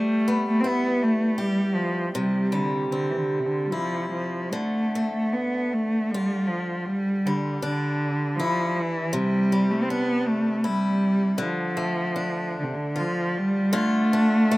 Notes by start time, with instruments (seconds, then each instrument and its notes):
Already playing: steel-string acoustic guitar G3 B3 G4, cello A3
0.28 steel-string acoustic guitar B3
0.48 cello A3
0.60 cello C4, steel-string acoustic guitar E4
0.67 cello B3
1.03 cello A3
1.38 cello G3, steel-string acoustic guitar G4
1.75 cello F3
2.15 steel-string acoustic guitar C3, cello G3
2.52 cello D3, steel-string acoustic guitar G3
2.89 cello D3, steel-string acoustic guitar C4
3.11 cello E3
3.17 cello D3
3.39 cello C3
3.46 cello D3
3.66 cello G3
3.71 cello F3, steel-string acoustic guitar E4
4.11 cello F3
4.51 steel-string acoustic guitar D3, cello A3
4.95 steel-string acoustic guitar A3
5.13 cello A3
5.33 cello B3
5.73 cello A3
6.10 cello G3, steel-string acoustic guitar F4
6.48 cello F3
6.85 cello G3
7.25 cello D3, steel-string acoustic guitar G3
7.62 cello D3, steel-string acoustic guitar D4
8.36 cello F3
8.40 steel-string acoustic guitar E4
8.75 cello E3
9.13 steel-string acoustic guitar C3, cello G3
9.52 steel-string acoustic guitar G3
9.70 cello A3
9.83 cello C4
9.89 cello B3, steel-string acoustic guitar D4
10.27 cello A3
10.64 cello G3, steel-string acoustic guitar E4
11.38 steel-string acoustic guitar D3, cello F3
11.77 steel-string acoustic guitar A3
12.16 steel-string acoustic guitar D4
12.59 cello C3 D3
12.74 cello D3
12.96 cello F3, steel-string acoustic guitar F4
13.38 cello G3
13.73 steel-string acoustic guitar D3 F4, cello A3
14.13 steel-string acoustic guitar D4
14.51 steel-string acoustic guitar A3